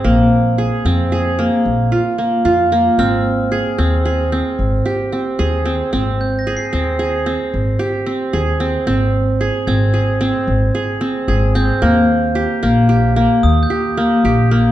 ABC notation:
X:1
M:11/8
L:1/16
Q:1/4=112
K:Ab
V:1 name="Glockenspiel"
z16 z6 | f'8- f'2 z12 | z2 g' b' c''8- c''2 z8 | z6 a'8- a'2 z4 g'2- |
g'2 z8 z2 e' g'8- g' |]
V:2 name="Qanun"
B,4 A2 C2 A2 B,4 F2 B,2 F2 B,2 | C4 A2 C2 A2 C4 G2 C2 A2 C2 | C4 A2 C2 A2 C4 G2 C2 A2 C2 | C4 A2 C2 A2 C4 A2 C2 A2 C2 |
B,4 G2 B,2 G2 B,4 G2 B,2 G2 B,2 |]
V:3 name="Upright bass" clef=bass
B,,,6 F,,6 B,,,2 z4 F,,4 | A,,,6 E,,6 A,,,2 z4 E,,4 | A,,,6 E,,6 A,,,2 z4 E,,4 | A,,,6 A,,,6 A,,,2 z4 A,,,4 |
E,,6 B,,,6 E,,2 z4 B,,,4 |]